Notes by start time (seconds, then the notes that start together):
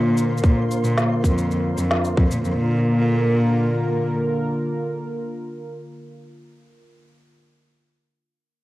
Already playing: A#2 D3 A#3 F4 A#4 C5 C6
0.17 cabasa
0.38 cabasa
0.44 A#2, kick, cabasa
0.71 cabasa
0.84 A#2, cabasa
0.98 snare, cabasa
1.24 F2, kick, cabasa
1.38 cabasa
1.51 cabasa
1.78 F2, cabasa
1.91 snare
2.05 cabasa
2.18 F2, kick
2.31 A#2, cabasa
2.45 F2, cabasa
2.57 A#2 D3 A#3 F4 A#4